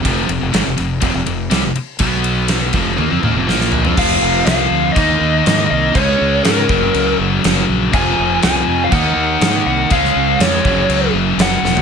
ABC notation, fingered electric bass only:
X:1
M:4/4
L:1/16
Q:1/4=122
K:Fphr
V:1 name="Fingered electric bass" clef=bass
F,,,2 F,,, F,,, A,,, F,,, F,,,2 F,,, F,,, F,,,2 C,, F,,, z2 | =B,,,6 F,,,2 E,, F,, E,, F,,, _B,,,3 F,, | F,,,2 F,,,2 C,,2 =D,,2 E,,2 E,,2 A,,2 C,,2 | D,,2 D,,2 A,,2 G,,,2 D,,2 G,,,2 G,,,2 B,,,2 |
F,,,2 F,,,2 C,,2 F,,2 E,,2 E,,2 A,,2 C,,2 | D,,2 D,,2 F,,2 G,,,2 D,,2 G,,,2 G,,,2 =E,,,2 |]